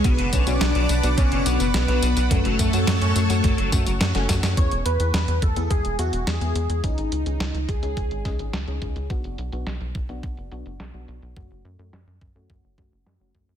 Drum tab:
HH |xxxxxxxxxxxxxxxx|xxxxxxxxxxxxxxxx|xxxxxxxxxxxxxxxx|xxxxxxxxxxxxxxxx|
TB |x-xxx-xxx-xxx-xx|x-xxx-xxx-xxx-xx|----------------|----------------|
SD |----o-------o---|----o-----o-oooo|----o-------o---|----o-----o-o---|
BD |o-o-----o-------|o-o-----o-o---o-|o-----o-o-------|o-----o-o-o---o-|

HH |xxxxxxxxxxxxxxxx|xxxxxxxxxxxxx-xx|
TB |----------------|----------------|
SD |----o-------o---|----o-----o-o---|
BD |o-----o-o-------|o-----o-o-o---o-|